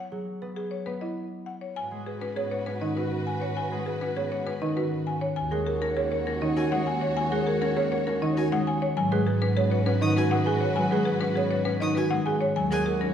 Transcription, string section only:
1.77 F#4 B4
5.37 F#4 C#5
8.97 F#4 B4
12.57 F#4 C#5

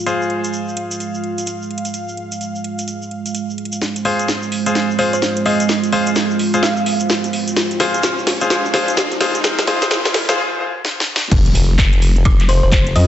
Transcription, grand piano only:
0.06 F4 G#4 C5
4.05 F4 G#4 C5
4.66 F4 G#4 C5
4.99 F4 G#4 C5
5.46 F4 G#4 C5
5.92 F4 G#4 C5
6.54 F4 G#4 C5
7.80 F4 G#4 C5
8.41 F4 G#4 C5
8.74 F4 G#4 C5
9.21 F4 G#4 C5
9.67 F4 G#4 C5
10.29 F4 G#4 C5

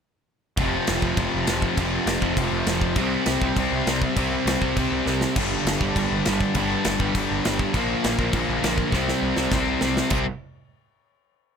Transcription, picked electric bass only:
0.57 F1
0.89 F1
1.02 F1
1.17 F1
1.34 F1
1.48 F1
1.77 F1
2.06 F1
2.21 F1
2.37 F1
2.51 F1
2.66 F1
2.96 C2
3.26 C2
3.42 C2
3.56 C2
3.72 C2
3.86 C2
4.17 C2
4.46 C2
4.62 C2
4.77 C2
4.91 C2
5.06 C2
5.36 G1
5.65 G1
5.81 G1
5.96 G1
6.11 G1
6.26 G1
6.56 G1
6.86 G1
6.99 G1
7.15 G1
7.30 G1
7.46 G1
7.74 A#1
8.05 A#1
8.18 A#1
8.33 A#1
8.49 A#1
8.64 A#1
8.92 C2
9.22 C2
9.37 C2
9.52 C2
9.67 C2
9.81 C2
10.11 C2

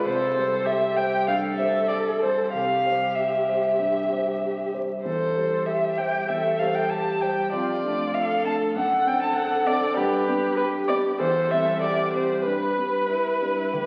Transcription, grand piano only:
0.05 C2
0.36 G3 G4 C5
0.97 G3 G4 C5
1.28 G2
1.58 G3 G4 C5
2.22 G3 G4 C5
2.54 C2
2.86 G3 G4 C5
3.48 G3 G4 C5
3.79 G2
4.11 G3 G4 C5
4.73 G3 G4 C5
5.05 E2
5.36 G3 G4 C5
5.99 G3 G4 C5
6.29 E2
6.60 G3 G4 C5
7.22 G3 G4 C5
7.53 F2
7.84 A3 D4 A4
8.45 A3 D4 A4
8.76 F#2
9.06 C4 D4 A4
9.67 C4 D4 A4
9.97 G2
10.28 B3 D4 G4
10.89 B3 D4 G4
11.19 E2
11.51 G3 C4 G4
12.14 G3 C4 G4
12.46 G2
12.78 G3 D4 G4
13.41 G3 D4 G4
13.73 D2

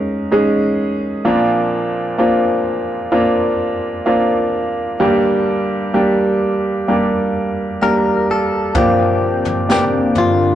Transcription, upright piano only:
Already playing: C#3 G#3 C#4 D#4 G#4 A#4
0.32 G#3 C#4 D#4 G#4
1.25 A#2 F3 A#3 C4 D4 F4
2.18 A#3 C4 D4 F4
3.12 A#3 C4 D4 F4
4.06 A#3 C4 D4 F4
5.00 G2 D3 G3 A#3 D4 G4
5.93 G3 A#3 D4 G4
6.88 G3 A#3 D4 G4
7.82 G3 A#3 D4 G4
8.75 A#2 F3 A#3 C4 D4 F4
9.69 A#3 C4 D4 G4

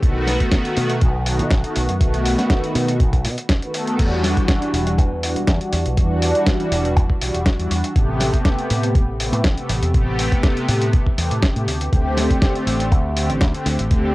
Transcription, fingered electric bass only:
0.03 B1
0.77 B2
1.02 B1
1.39 B2
1.51 B1
1.76 B1
1.89 F#2
2.00 B1
2.75 B2
3.00 B1
3.25 B2
3.99 E2
4.73 E1
4.98 E2
5.36 E1
5.48 E2
5.73 E2
5.86 B1
5.97 E2
6.72 E1
6.96 E2
7.21 B1
7.34 E1
7.59 E2
7.71 E2
7.96 A1
8.71 A2
8.95 A1
9.33 A2
9.45 A1
9.69 A1
9.82 E2
9.94 A1
10.68 A2
10.93 A1
11.18 E2
11.31 A2
11.56 A2
11.67 D2
11.93 D2
12.67 A1
12.92 D2
13.30 A1
13.41 D2
13.66 D2
13.79 A1
13.91 D2

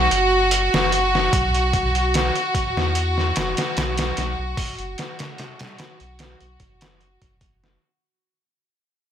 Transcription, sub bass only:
0.12 F#1
0.74 F#1
1.33 B1
2.77 E2
3.37 F#1
3.77 B1
4.18 B1
4.39 B1
4.79 F#1
6.01 B1
6.41 B1
6.61 F#1
7.22 F#1

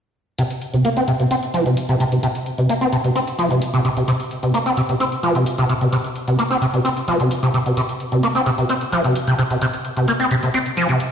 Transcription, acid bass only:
0.39 C3
0.74 C3
0.85 A#3
0.97 C4
1.08 C3
1.20 C3
1.31 C4
1.54 F3
1.66 C3
1.89 C3
2.00 C3
2.12 C3
2.23 C3
2.58 C3
2.69 A#3
2.81 C4
2.92 C3
3.04 C3
3.15 C4
3.39 F3
3.50 C3
3.74 C3
3.85 C3
3.97 C3
4.08 C3
4.43 C3
4.54 A#3
4.66 C4
4.77 C3
4.89 C3
5.00 C4
5.23 F3
5.35 C3
5.58 C3
5.69 C3
5.81 C3
5.92 C3
6.28 C3
6.39 A#3
6.50 C4
6.62 C3
6.73 C3
6.85 C4
7.08 F3
7.20 C3
7.43 C3
7.54 C3
7.66 C3
7.77 C3
8.12 C3
8.23 A#3
8.35 C4
8.46 C3
8.58 C3
8.69 C4
8.92 F3
9.04 C3
9.27 C3
9.38 C3
9.51 C3
9.62 C3
9.97 C3
10.08 A#3
10.20 C4
10.31 C3
10.43 C3
10.54 C4
10.77 F3
10.89 C3

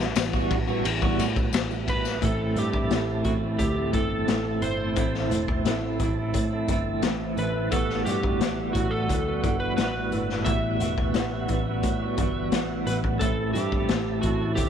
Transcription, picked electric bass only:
Already playing: A1
0.16 A1
0.51 A1
0.85 A1
1.19 A2
1.53 A1
2.22 A1
2.56 G2
2.89 A1
3.25 A1
3.59 D2
3.93 G1
4.27 A1
4.62 G1
4.97 A1
5.30 E1
5.65 A1
6.00 A1
6.34 A2
6.68 G1
7.03 A1
7.38 A1
7.72 A1
8.06 G2
8.40 A1
8.75 A1
9.09 D2
9.44 G1
9.78 A1
10.12 G1
10.46 A1
10.80 E1
11.15 A1
11.49 A1
11.83 A2
12.18 G1
12.52 A1
12.87 A1
13.21 A1
13.55 G2
13.90 A1
14.23 A1
14.57 D2

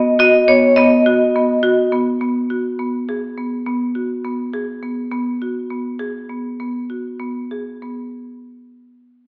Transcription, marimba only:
Already playing: B3
0.19 F#4
0.48 B3
0.78 B3
1.06 F#4
1.36 B3
1.63 F#4
1.92 B3
2.21 B3
2.50 F#4
2.79 B3
3.09 G#4
3.38 B3
3.66 B3
3.95 F#4
4.25 B3
4.53 G#4
4.83 B3
5.12 B3
5.42 F#4
5.70 B3
5.99 G#4
6.29 B3
6.60 B3
6.90 F#4
7.20 B3
7.51 G#4
7.82 B3

